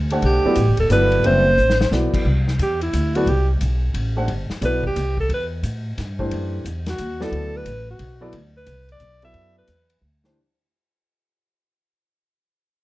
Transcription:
Already playing: D2
0.10 A3 D4 G4 C5 F#5, ride
0.22 B1 G4, ride
0.45 F#3 B3 E4 A4 D5, muted upright bass stroke
0.55 A1, hi-hat pedal, ride
0.68 F#1
0.77 D1 A4, ride
0.89 G1 F#3 B3 E4 A4 B4 D5, hi-hat pedal, ride
1.12 ride
1.24 F#1 G3 C4 F#4 B4 C5 E5, ride
1.57 A1, hi-hat pedal
1.70 snare
1.81 snare
1.91 B1 F#3 B3 E4 A4 D5, snare
2.14 muted upright bass stroke, kick, crash
2.25 C2
2.48 snare
2.59 E2 G4, hi-hat pedal, ride
2.81 E4, ride
2.93 D2, hi-hat pedal, ride
3.15 F#3 B3 E4 F#4 A4 D5, ride
3.26 C2 G4, ride
3.61 B1, hi-hat pedal, ride
3.94 A1, ride
4.16 A3 D4 G4 C5 F#5
4.28 G1, ride
4.50 muted upright bass stroke, snare
4.61 B1 F#3 B3 E4 A4 B4 D5, hi-hat pedal, ride
4.83 G4, kick
4.96 C2, hi-hat pedal, ride
5.17 A4, kick
5.29 E2, ride
5.34 B4
5.63 A2, hi-hat pedal, ride
5.98 G2, snare, ride
6.19 E3 A3 D4 G4 C5, kick
6.31 F#2, ride
6.65 E2, hi-hat pedal, ride
6.86 F#4, snare, ride
6.98 D#2, hi-hat pedal, ride
7.20 F#3 B3 E4 A4 D5, snare
7.32 D2, ride
7.57 B4
7.65 A1, hi-hat pedal, ride
7.91 F#4
7.99 B1, ride
8.21 F#3 B3 E4 A4 D5
8.33 D2, ride
8.57 B4
8.66 C2, hi-hat pedal, ride
8.89 D5, ride
9.00 B1, hi-hat pedal, ride
9.22 F#3 B3 E4 A4 D5 E5, ride
9.34 F#2, ride
9.58 B4
9.67 E2, hi-hat pedal, ride
9.90 ride
10.01 D2
10.24 E3 A3 D4 G4 C5, snare

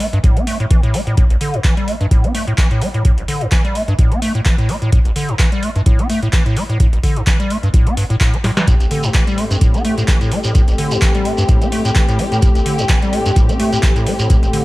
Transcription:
0.00 A3, open hi-hat
0.13 G2, closed hi-hat
0.24 A2, kick, closed hi-hat
0.37 C4, closed hi-hat
0.47 A3, open hi-hat
0.60 A2, closed hi-hat
0.71 E3, kick, closed hi-hat
0.83 A2, closed hi-hat
0.94 A3, open hi-hat
1.07 A2, closed hi-hat
1.17 A2, kick, closed hi-hat
1.30 A1, closed hi-hat
1.41 D3, open hi-hat
1.54 G2, closed hi-hat
1.64 E3, kick, clap, closed hi-hat
1.77 G3, closed hi-hat
1.88 A3, open hi-hat
2.01 G2, closed hi-hat
2.11 A2, kick, closed hi-hat
2.24 C4, closed hi-hat
2.35 A3, open hi-hat
2.47 A2, closed hi-hat
2.58 E3, kick, clap, closed hi-hat
2.71 A2, closed hi-hat
2.82 A3, open hi-hat
2.94 A2, closed hi-hat
3.05 A2, kick, closed hi-hat
3.18 A1, closed hi-hat
3.28 D3, open hi-hat
3.41 G2, closed hi-hat
3.52 E3, kick, clap, closed hi-hat
3.65 G3, closed hi-hat
3.75 A3, open hi-hat
3.88 G2, closed hi-hat
3.99 A2, kick, closed hi-hat
4.12 C4, closed hi-hat
4.22 A3, open hi-hat
4.35 A2, closed hi-hat
4.45 E3, kick, clap, closed hi-hat
4.58 A2, closed hi-hat
4.69 A3, open hi-hat
4.82 A2, closed hi-hat
4.92 A2, kick, closed hi-hat
5.05 A1, closed hi-hat
5.16 D3, open hi-hat
5.29 G2, closed hi-hat
5.39 E3, kick, clap, closed hi-hat
5.52 G3, closed hi-hat
5.63 A3, open hi-hat
5.76 G2, closed hi-hat
5.86 A2, kick, closed hi-hat
5.99 C4, closed hi-hat
6.10 A3, open hi-hat
6.23 A2, closed hi-hat
6.33 E3, kick, clap, closed hi-hat
6.46 A2, closed hi-hat
6.57 A3, open hi-hat
6.69 A2, closed hi-hat
6.80 A2, kick, closed hi-hat
6.93 A1, closed hi-hat
7.03 D3, kick, open hi-hat
7.16 G2, closed hi-hat
7.27 E3, kick, clap, closed hi-hat
7.40 G3, closed hi-hat
7.50 A3, open hi-hat
7.63 G2, closed hi-hat
7.74 A2, kick, closed hi-hat
7.87 C4, closed hi-hat
7.97 G2, open hi-hat
8.10 A2, closed hi-hat
8.21 A2, kick, clap, closed hi-hat
8.34 A3, closed hi-hat
8.44 A2, snare, open hi-hat
8.57 E3, snare, closed hi-hat
8.67 A2 A3 C4 G4, kick, closed hi-hat, shekere
8.80 A1, closed hi-hat, shekere
8.91 D3, open hi-hat
9.03 G2, closed hi-hat, shekere
9.14 E3, kick, clap, closed hi-hat, shekere
9.27 G3, closed hi-hat, shekere
9.38 A3, open hi-hat
9.51 G2, closed hi-hat, shekere
9.61 A2, kick, closed hi-hat, shekere
9.74 C4, closed hi-hat, shekere
9.85 A3, open hi-hat
9.98 A2, closed hi-hat, shekere
10.08 E3, kick, clap, closed hi-hat, shekere
10.21 A2, closed hi-hat, shekere
10.32 A3, open hi-hat
10.44 A2, closed hi-hat, shekere
10.55 A2, kick, closed hi-hat, shekere
10.68 A1, closed hi-hat, shekere
10.78 D3, open hi-hat
10.91 G2, closed hi-hat, shekere
11.02 E3, kick, clap, closed hi-hat, shekere
11.15 G3, closed hi-hat, shekere
11.25 A3, open hi-hat
11.38 G2, closed hi-hat, shekere
11.48 A2, kick, closed hi-hat, shekere
11.61 C4, closed hi-hat, shekere
11.72 A3, open hi-hat
11.85 A2, closed hi-hat, shekere
11.96 E3, kick, clap, closed hi-hat, shekere
12.09 A2, closed hi-hat, shekere
12.19 A3, open hi-hat
12.32 A2, closed hi-hat, shekere
12.42 A2, kick, closed hi-hat, shekere
12.55 A1, closed hi-hat, shekere
12.66 D3, open hi-hat
12.79 G2, closed hi-hat, shekere
12.89 E3, kick, clap, closed hi-hat, shekere
13.02 G3, closed hi-hat, shekere
13.13 A3, open hi-hat
13.26 G2, closed hi-hat, shekere
13.36 A2, kick, closed hi-hat, shekere
13.49 C4, closed hi-hat, shekere
13.60 A3, open hi-hat
13.72 A2, closed hi-hat, shekere
13.83 E3, kick, clap, closed hi-hat, shekere
13.96 A2, closed hi-hat, shekere
14.06 A3, open hi-hat
14.19 A2, closed hi-hat, shekere
14.30 kick, closed hi-hat, shekere
14.43 A1, closed hi-hat, shekere
14.53 D3, open hi-hat

